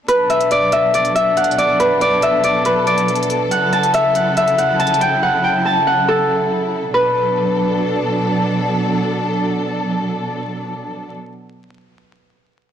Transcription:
0.08 B2 F#3 D4 A4 B4, closed hi-hat
0.30 E5, closed hi-hat
0.41 closed hi-hat
0.51 D5, closed hi-hat
0.72 E5, closed hi-hat
0.94 D5, closed hi-hat
1.05 closed hi-hat
1.15 E5, closed hi-hat
1.37 F#5, closed hi-hat
1.44 closed hi-hat
1.51 closed hi-hat
1.58 D5, closed hi-hat
1.80 B4, closed hi-hat
2.01 D5, closed hi-hat
2.22 E5, closed hi-hat
2.44 D5, closed hi-hat
2.65 B4, closed hi-hat
2.87 D5, closed hi-hat
2.98 closed hi-hat
3.08 closed hi-hat
3.16 closed hi-hat
3.23 closed hi-hat
3.30 closed hi-hat
3.51 C#3 E4 F#5, closed hi-hat
3.73 A5, closed hi-hat
3.83 closed hi-hat
3.94 E5, closed hi-hat
4.15 F#5, closed hi-hat
4.37 E5, closed hi-hat
4.48 closed hi-hat
4.58 F#5, closed hi-hat
4.80 A5, closed hi-hat
4.87 closed hi-hat
4.94 closed hi-hat
5.01 G5, closed hi-hat
5.23 F#5
5.44 G5
5.65 A5
5.87 F#5
6.08 A4
6.94 B2 F#3 D4 A4 B4

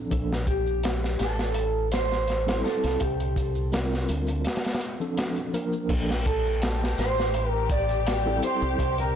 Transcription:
0.10 A#1 F3 A#3 D4 A4, kick, closed hi-hat, maracas
0.33 snare
0.47 G4, kick, closed hi-hat, maracas
0.67 maracas
0.83 snare, closed hi-hat, maracas
1.04 snare
1.19 A1 A4, snare, closed hi-hat, maracas
1.39 snare, maracas
1.54 closed hi-hat, maracas
1.92 C5, snare, closed hi-hat, maracas
2.12 snare, maracas
2.28 snare, closed hi-hat, maracas
2.46 G3 C4 E4 A4, snare, closed hi-hat
2.64 A4, snare, maracas
2.84 C2, snare, closed hi-hat, maracas
3.00 C2 G4, kick, closed hi-hat, maracas
3.20 closed hi-hat
3.36 kick, closed hi-hat, maracas
3.55 triangle, maracas
3.72 G3 C4 F4 A#4, snare, closed hi-hat, maracas
3.94 snare
4.09 D2, closed hi-hat, maracas
4.27 closed hi-hat, maracas
4.45 snare, closed hi-hat, maracas
4.56 snare, closed hi-hat
4.64 snare, closed hi-hat
4.73 snare, closed hi-hat
4.81 closed hi-hat, maracas
5.00 F3 C4 D4 A4, maracas
5.17 snare, closed hi-hat, maracas
5.36 closed hi-hat
5.53 F3 A#3 D4 A#4, closed hi-hat, maracas
5.73 maracas
5.89 A#1 F3 A#3 D4 G4 A4, kick, closed hi-hat, crash, maracas
6.11 snare
6.26 A4, kick, closed hi-hat, maracas
6.46 maracas
6.62 snare, closed hi-hat, maracas
6.84 snare
6.98 A1 C5, snare, closed hi-hat, maracas
7.17 snare, maracas
7.34 closed hi-hat, maracas
7.49 A#4
7.70 D5, kick, closed hi-hat, maracas
7.89 closed hi-hat, maracas
8.07 snare, closed hi-hat, maracas
8.26 G3 C4 E4 A4
8.42 C5, closed hi-hat, maracas
8.62 C2, maracas
8.78 C2, kick, closed hi-hat, maracas
8.98 A#4, closed hi-hat

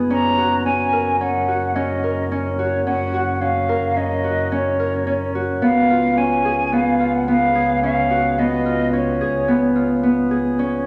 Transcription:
Already playing: B3 D#4 G#4
0.10 F#1 C#4 A#5
0.38 F#4
0.65 C#4 G#5
0.93 A#4
1.20 C#4 F#5
1.48 F#4
1.74 C#4 D#5
2.04 A#4
2.32 C#4
2.57 F#4 C#5
2.85 C#4 F#5
3.14 F#4
3.33 F#5
3.40 C#4 F5
3.69 A#4
3.96 C#4 D#5
4.24 F#4
4.51 C#4 C#5
4.80 A#4
5.07 C#4
5.35 F#4
5.61 C#2 B3 F5
5.90 F4
6.17 C#4 G#5
6.45 G#4
6.72 B3 F5
7.00 F4
7.15 F#5
7.28 B3 F5
7.55 G#4
7.83 C#4 F5
8.10 F#4
8.38 B3 D#5
8.66 F4
8.93 C#4 C#5
9.21 G#4
9.48 B3
9.76 F4
10.03 B3
10.31 G#4
10.59 C#4

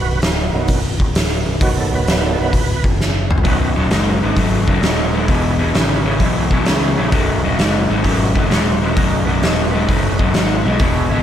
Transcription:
Already playing: B0 F#4 B4
0.22 D1, snare, open hi-hat
0.53 B0 D#3 F#3 B3
0.68 kick, open hi-hat
1.00 D1, kick
1.15 snare, open hi-hat
1.46 B0
1.61 B0 D#3 F#3 B3 F#4, kick, open hi-hat
1.78 A4
1.92 D1 B4
2.07 snare, open hi-hat
2.25 A4
2.39 B0 D#3 F#3 B3 B4
2.53 D1, kick, open hi-hat
2.84 F#1, kick
3.01 snare
3.31 mid tom
3.38 floor tom
3.43 B0 B1 F#2 D#4 F#4 B4, kick, open hi-hat
3.76 D#1 B1 F#2 D#4 F#4 C#5
3.90 F#1 B1 G#2 D#4 F#4 A#4, snare, open hi-hat
4.20 G#1 B1 G#2 D#4 F#4 B4
4.35 G#1 B1 F#2 D#4 F#4 B4, kick, open hi-hat
4.67 F#1 B1 F#2 D#4 F#4 B4, kick
4.82 D#1 B1 G#2 D#4 F#4 C#5, snare, open hi-hat
5.11 B1 G#2 D#4 F#4 B4
5.27 E1 E2 B2 E4 G#4 B4, kick, open hi-hat
5.59 E2 B2 E4 G#4 B4
5.73 G#1 E2 C#3 E4 G#4 B4, snare, open hi-hat
6.03 E2 C#3 E4 G#4 B4
6.18 B1 E2 B2 E4 G#4 B4, kick, open hi-hat
6.50 E2 B2 E4 G#4 B4, kick
6.63 E2 C#3 E4 G#4 B4, snare, open hi-hat
6.67 C#2
6.96 A#1 E2 C#3 E4 G#4 B4
7.09 B0 B1 F#2 D#4 F#4 B4, kick, open hi-hat
7.40 D#1 B1 D#4 F#4 B4
7.44 F#2
7.56 F#1 B1 G#2 D#4 F#4 B4, snare, open hi-hat
7.88 G#1 B1 G#2 D#4 F#4 B4
8.01 G#1 B1 F#2 D#4 F#4 B4, kick, open hi-hat
8.33 F#1 B1 F#2 D#4 F#4 B4, kick
8.50 D#1 B1 G#2 D#4 F#4 B4, snare, open hi-hat
8.81 B1 G#2 D#4 F#4 B4
8.95 B0 B1 F#2 D#4 F#4 A#4, kick, open hi-hat
9.25 B1 F#2 D#4 F#4 B4
9.40 B1 G#2 D#4 F#4 G#4, snare, open hi-hat
9.44 D#1
9.71 B1 G#2 D#4 F#4 B4
9.86 F#1 B1 F#2 D#4 F#4 B4, kick, open hi-hat
10.17 B1 F#2 D#4 F#4 B4 D#5, kick
10.31 B1 G#2 D#4 F#4 B4 F#5, snare, open hi-hat
10.35 G#1
10.63 B1 G#2 D#4 F#4 B4 G#5
10.79 E1 E2 B2 E4 G#4 B4, kick, open hi-hat
11.10 G#1 E2 B2 E4 G#4 B4

